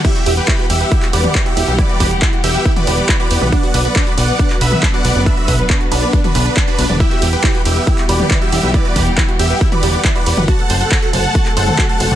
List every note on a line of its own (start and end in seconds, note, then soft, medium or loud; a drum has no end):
0.00 6.96 F#5 medium
0.05 3.49 E3 medium
0.05 3.49 G3 medium
0.05 10.44 B3 medium
0.05 0.11 E4 loud
0.05 3.49 G4 loud
0.05 0.33 G4 medium
0.05 0.33 E5 loud
0.05 kick loud
0.05 closed hi-hat medium
0.05 crash medium
0.15 0.21 F#4 medium
0.15 closed hi-hat medium
0.26 0.40 E1 loud
0.26 0.29 G4 loud
0.26 open hi-hat loud
0.26 ride medium
0.37 0.66 G4 medium
0.37 0.43 G4 medium
0.37 0.66 B4 loud
0.37 closed hi-hat medium
0.48 0.54 E4 loud
0.48 kick loud
0.48 clap loud
0.48 closed hi-hat medium
0.59 0.61 F#4 medium
0.59 closed hi-hat medium
0.70 0.83 E1 loud
0.70 1.08 G4 medium
0.70 0.76 G4 medium
0.70 1.08 E5 loud
0.70 open hi-hat loud
0.70 ride medium
0.81 0.83 B4 medium
0.81 closed hi-hat medium
0.92 0.98 E4 loud
0.92 kick loud
0.92 closed hi-hat medium
1.02 1.08 F#4 medium
1.02 clap soft
1.02 closed hi-hat medium
1.13 1.27 E1 loud
1.13 1.16 G4 loud
1.13 1.42 B4 medium
1.13 1.42 D5 medium
1.13 open hi-hat loud
1.13 ride medium
1.24 1.30 G4 medium
1.24 closed hi-hat medium
1.24 mid tom medium
1.35 1.41 E4 loud
1.35 kick loud
1.35 clap loud
1.35 closed hi-hat medium
1.46 1.48 F#4 medium
1.46 1.74 G4 medium
1.46 1.74 E5 loud
1.46 closed hi-hat medium
1.57 1.63 E1 medium
1.57 1.63 G4 medium
1.57 open hi-hat loud
1.57 ride medium
1.68 1.81 B1 medium
1.68 1.70 B4 medium
1.68 closed hi-hat medium
1.78 1.85 E4 loud
1.78 2.07 B4 medium
1.78 2.07 D5 loud
1.78 kick loud
1.78 closed hi-hat medium
1.89 1.95 F#4 medium
1.89 closed hi-hat medium
2.00 2.14 E1 loud
2.00 2.03 G4 loud
2.00 kick medium
2.00 open hi-hat loud
2.00 ride medium
2.11 2.17 G4 medium
2.11 closed hi-hat medium
2.22 2.28 E4 loud
2.22 kick loud
2.22 clap loud
2.22 closed hi-hat medium
2.33 2.35 F#4 medium
2.33 closed hi-hat medium
2.44 2.57 E1 loud
2.44 2.72 G4 medium
2.44 2.50 G4 medium
2.44 2.72 E5 loud
2.44 open hi-hat loud
2.44 ride medium
2.55 2.57 B4 medium
2.55 closed hi-hat medium
2.65 2.71 E4 loud
2.65 kick loud
2.65 closed hi-hat medium
2.76 2.82 F#4 medium
2.76 3.14 B4 medium
2.76 3.14 D5 medium
2.76 closed hi-hat medium
2.76 mid tom medium
2.87 3.01 E1 loud
2.87 2.90 G4 loud
2.87 open hi-hat loud
2.87 ride medium
2.98 3.04 G4 medium
2.98 closed hi-hat medium
3.09 3.15 E4 loud
3.09 kick loud
3.09 clap loud
3.09 closed hi-hat medium
3.20 3.22 F#4 medium
3.20 3.48 B4 medium
3.20 3.48 D5 loud
3.20 closed hi-hat medium
3.31 3.37 E1 medium
3.31 3.37 G4 medium
3.31 open hi-hat loud
3.31 ride medium
3.41 3.55 B1 medium
3.41 3.44 B4 medium
3.41 mid tom medium
3.52 6.97 D3 medium
3.52 6.97 F#3 medium
3.52 3.58 D4 loud
3.52 6.97 B4 loud
3.52 3.81 D5 medium
3.52 3.81 F#5 loud
3.52 kick loud
3.52 closed hi-hat medium
3.63 3.69 F#4 medium
3.63 closed hi-hat medium
3.74 3.88 B1 loud
3.74 3.77 B4 loud
3.74 open hi-hat loud
3.74 ride medium
3.85 3.91 B4 medium
3.85 4.14 B4 medium
3.85 4.14 D5 loud
3.85 closed hi-hat medium
3.96 4.02 D4 loud
3.96 kick loud
3.96 clap loud
3.96 closed hi-hat medium
4.07 4.09 F#4 medium
4.07 closed hi-hat medium
4.18 4.31 B1 loud
4.18 4.24 B4 medium
4.18 4.56 D5 medium
4.18 4.56 F#5 loud
4.18 open hi-hat loud
4.18 ride medium
4.29 4.31 D5 medium
4.29 closed hi-hat medium
4.39 4.45 D4 loud
4.39 kick loud
4.39 closed hi-hat medium
4.50 4.56 F#4 medium
4.50 clap soft
4.50 closed hi-hat medium
4.61 4.75 B1 loud
4.61 4.90 B4 medium
4.61 4.64 B4 loud
4.61 4.90 E5 loud
4.61 open hi-hat loud
4.61 ride medium
4.72 4.78 B4 medium
4.72 mid tom medium
4.83 4.89 D4 loud
4.83 kick loud
4.83 clap loud
4.83 closed hi-hat medium
4.94 4.96 F#4 medium
4.94 5.22 D5 medium
4.94 5.22 F#5 loud
4.94 closed hi-hat soft
5.05 5.11 B1 medium
5.05 5.11 B4 medium
5.05 open hi-hat loud
5.05 ride medium
5.15 5.29 F#1 medium
5.15 5.18 D5 medium
5.15 closed hi-hat medium
5.26 5.32 D4 loud
5.26 5.55 B4 medium
5.26 5.55 E5 loud
5.26 kick loud
5.26 closed hi-hat medium
5.37 5.43 F#4 medium
5.37 closed hi-hat medium
5.48 5.62 B1 loud
5.48 5.50 B4 loud
5.48 kick medium
5.48 open hi-hat loud
5.48 ride medium
5.59 5.65 B4 medium
5.59 closed hi-hat medium
5.70 5.76 D4 loud
5.70 kick loud
5.70 clap loud
5.70 closed hi-hat medium
5.81 5.83 F#4 medium
5.81 closed hi-hat soft
5.92 6.05 B1 loud
5.92 6.20 D4 medium
5.92 5.98 B4 medium
5.92 6.20 B4 medium
5.92 open hi-hat loud
5.92 ride medium
6.02 6.05 D5 medium
6.02 closed hi-hat medium
6.13 6.19 D4 loud
6.13 kick loud
6.13 closed hi-hat medium
6.24 6.62 D4 medium
6.24 6.30 F#4 medium
6.24 6.62 B4 medium
6.24 closed hi-hat medium
6.24 mid tom medium
6.35 6.48 B1 loud
6.35 6.37 B4 loud
6.35 open hi-hat loud
6.35 ride medium
6.46 6.52 B4 medium
6.57 6.63 D4 loud
6.57 kick loud
6.57 clap loud
6.57 closed hi-hat medium
6.68 6.96 D4 medium
6.68 6.70 F#4 medium
6.68 6.96 B4 loud
6.68 closed hi-hat soft
6.78 6.85 B1 medium
6.78 6.85 B4 medium
6.78 open hi-hat loud
6.78 ride medium
6.89 7.03 E1 medium
6.89 6.92 D5 medium
6.89 closed hi-hat medium
6.89 mid tom medium
7.00 10.45 E3 medium
7.00 10.45 G3 medium
7.00 7.06 E4 loud
7.00 7.29 G4 medium
7.00 10.45 G4 loud
7.00 7.29 E5 loud
7.00 12.15 F#5 medium
7.00 kick loud
7.00 closed hi-hat medium
7.11 7.17 F#4 medium
7.11 closed hi-hat medium
7.22 7.35 E1 loud
7.22 7.24 G4 loud
7.22 open hi-hat loud
7.22 ride medium
7.33 7.39 G4 medium
7.33 7.61 G4 medium
7.33 7.61 B4 loud
7.33 closed hi-hat medium
7.44 7.50 E4 loud
7.44 kick loud
7.44 clap loud
7.44 closed hi-hat medium
7.54 7.57 F#4 medium
7.54 closed hi-hat soft
7.65 7.79 E1 loud
7.65 7.71 G4 medium
7.65 8.04 G4 medium
7.65 8.04 E5 loud
7.65 open hi-hat loud
7.65 ride medium
7.76 7.79 B4 medium
7.76 closed hi-hat medium
7.87 7.93 E4 loud
7.87 kick loud
7.87 closed hi-hat medium
7.98 8.04 F#4 medium
7.98 clap soft
7.98 closed hi-hat medium
8.09 8.22 E1 loud
8.09 8.11 G4 loud
8.09 8.37 B4 medium
8.09 8.38 D5 loud
8.09 open hi-hat loud
8.09 ride medium
8.20 8.26 G4 medium
8.20 closed hi-hat soft
8.20 mid tom medium
8.31 8.37 E4 loud
8.31 kick loud
8.31 clap loud
8.31 closed hi-hat medium
8.42 8.44 F#4 medium
8.42 8.70 G4 medium
8.42 8.70 E5 loud
8.42 closed hi-hat soft
8.52 8.59 E1 medium
8.52 8.58 G4 medium
8.52 open hi-hat loud
8.52 ride medium
8.63 8.77 B1 medium
8.63 8.66 B4 medium
8.63 closed hi-hat medium
8.74 8.80 E4 loud
8.74 9.03 B4 medium
8.74 9.03 D5 loud
8.74 kick loud
8.74 closed hi-hat medium
8.85 8.91 F#4 medium
8.85 closed hi-hat soft
8.96 9.09 E1 loud
8.96 8.98 G4 loud
8.96 kick medium
8.96 open hi-hat loud
8.96 ride medium
9.07 9.13 G4 medium
9.07 closed hi-hat medium
9.18 9.24 E4 loud
9.18 kick loud
9.18 clap loud
9.18 closed hi-hat medium
9.28 9.31 F#4 medium
9.28 closed hi-hat medium
9.39 9.53 E1 medium
9.39 9.45 G4 medium
9.39 9.68 G4 medium
9.39 9.68 E5 loud
9.39 open hi-hat loud
9.39 ride medium
9.50 9.53 B4 medium
9.50 closed hi-hat medium
9.61 9.67 E4 loud
9.61 kick loud
9.61 closed hi-hat medium
9.72 9.78 F#4 medium
9.72 10.10 B4 medium
9.72 10.10 D5 loud
9.72 closed hi-hat medium
9.72 mid tom medium
9.83 9.96 E1 loud
9.83 9.85 G4 loud
9.83 open hi-hat loud
9.83 ride medium
9.94 10.00 G4 medium
9.94 closed hi-hat medium
10.05 10.11 E4 loud
10.05 kick loud
10.05 clap loud
10.05 closed hi-hat medium
10.15 10.18 F#4 medium
10.15 10.44 B4 medium
10.15 10.44 D5 loud
10.15 closed hi-hat medium
10.26 10.33 E1 medium
10.26 10.32 G4 medium
10.26 open hi-hat loud
10.26 ride medium
10.37 10.51 F#1 medium
10.37 10.40 B4 medium
10.37 closed hi-hat medium
10.37 mid tom medium
10.48 12.15 C3 medium
10.48 12.15 F#3 medium
10.48 12.15 A3 medium
10.48 10.54 F#4 loud
10.48 12.15 A4 loud
10.48 10.77 F#5 medium
10.48 10.77 A5 loud
10.48 kick loud
10.48 closed hi-hat medium
10.59 10.65 A4 medium
10.59 closed hi-hat medium
10.70 10.83 F#1 loud
10.70 10.72 C5 loud
10.70 open hi-hat loud
10.70 ride medium
10.81 11.09 A4 medium
10.81 10.87 C5 medium
10.81 11.09 F#5 loud
10.81 closed hi-hat medium
10.92 10.98 F#4 loud
10.92 kick loud
10.92 clap loud
10.92 closed hi-hat medium
11.02 11.05 A4 medium
11.02 closed hi-hat medium
11.13 11.27 F#1 loud
11.13 11.19 C5 medium
11.13 11.51 F#5 medium
11.13 11.51 A5 loud
11.13 open hi-hat loud
11.13 ride medium
11.24 11.27 F#5 medium
11.24 closed hi-hat medium
11.35 11.41 F#4 loud
11.35 kick loud
11.35 closed hi-hat medium
11.46 11.52 A4 medium
11.46 clap soft
11.46 closed hi-hat medium
11.57 11.70 F#1 loud
11.57 11.85 A4 medium
11.57 11.59 C5 loud
11.57 11.85 F#5 loud
11.57 open hi-hat loud
11.57 ride medium
11.68 11.74 C5 medium
11.68 closed hi-hat medium
11.68 mid tom medium
11.78 11.85 F#4 loud
11.78 kick loud
11.78 clap loud
11.78 closed hi-hat medium
11.89 11.92 A4 medium
11.89 12.15 F#5 medium
11.89 12.15 A5 loud
11.89 closed hi-hat medium
12.00 12.07 F#1 medium
12.00 12.06 C5 medium
12.00 open hi-hat loud
12.00 ride medium
12.11 12.15 C2 medium
12.11 12.14 F#5 medium
12.11 closed hi-hat medium